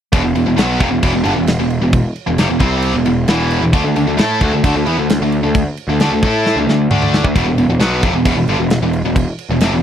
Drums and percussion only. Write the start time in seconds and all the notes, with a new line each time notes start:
0.13 kick, crash
0.35 crash
0.58 snare, crash
0.80 kick, crash
1.03 kick, crash
1.25 crash
1.47 snare, crash
1.70 crash
1.93 kick, crash
2.16 crash
2.38 snare, crash
2.60 kick, crash
2.82 crash
3.06 crash
3.28 snare, crash
3.51 crash
3.73 kick, crash
3.96 crash
4.18 snare, crash
4.41 kick, crash
4.64 kick, crash
4.86 crash
5.09 snare, crash
5.32 crash
5.55 kick, crash
5.77 crash
6.00 snare, crash
6.23 kick, crash
6.46 snare
6.69 snare
6.91 mid tom
7.02 mid tom
7.14 snare
7.24 kick
7.36 kick, crash
7.58 crash
7.80 snare, crash
8.03 kick, crash
8.25 kick, crash
8.48 crash
8.70 snare, crash
8.93 crash
9.16 kick, crash
9.39 crash
9.60 snare, crash